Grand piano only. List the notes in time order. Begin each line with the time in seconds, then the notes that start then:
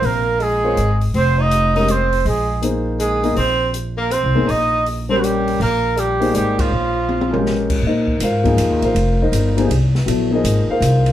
Already playing: C3 F4 A#4 C5
0.64 C4 F4 A#4 C#5
1.75 G#3 C#4 G4 A#4
2.62 A#3 D#4 G#4 C5
3.23 A#3 D#4 G#4 D#5
4.35 A#3 D#4 G#4 C5
5.09 G3 C#4 G4 A#4
6.20 A#3 D#4 G#4 C5
7.31 G#3 C#4 G4 A#4
7.87 D#4 A#4 C5 D#5
8.23 F4 A#4 C5 F5
8.44 F3 A#3 D#4 G#4
8.80 E5
8.85 F4 A#4 C5 F5
9.22 D#4 A#4 C5 D#5
9.56 F3 A#3 C4 D#4 G4 G#4 C5
10.06 F#3 B3 E4 A4
10.31 F3 A#3 D#4 G#4
10.35 A#4 C5 D#5
10.70 F4 A#4 C5 F5